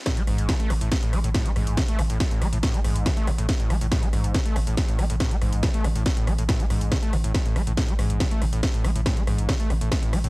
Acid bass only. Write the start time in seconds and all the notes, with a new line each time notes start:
0.06 A2
0.17 A3
0.27 G#2
0.49 D3
0.60 A3
0.70 A2
0.81 A2
1.03 A2
1.13 A3
1.24 A2
1.34 A2
1.45 A3
1.56 G#2
1.77 D3
1.88 A3
1.99 A2
2.10 A2
2.31 A2
2.42 A3
2.53 A2
2.63 A2
2.74 A3
2.84 G#2
3.06 D3
3.17 A3
3.27 A2
3.38 A2
3.60 A2
3.70 A3
3.81 A2
3.92 A2
4.03 A3
4.13 G#2
4.34 D3
4.46 A3
4.56 A2
4.67 A2
4.88 A2
4.99 A3
5.10 A2
5.20 A2
5.31 A3
5.42 G#2
5.63 D3
5.74 A3
5.84 A2
5.96 A2
6.17 A2
6.27 A3
6.38 A2
6.49 A2
6.60 A3
6.70 G#2
6.92 D3
7.03 A3
7.13 A2
7.24 A2
7.45 A2
7.56 A3
7.67 A2
7.77 A2
7.88 A3
7.99 G#2
8.20 D3
8.31 A3
8.42 A2
8.53 A2
8.74 A2
8.84 A3
8.95 A2
9.06 A2
9.17 A3
9.27 G#2
9.49 D3
9.60 A3
9.70 A2
9.81 A2
10.03 A2
10.13 A3
10.24 A2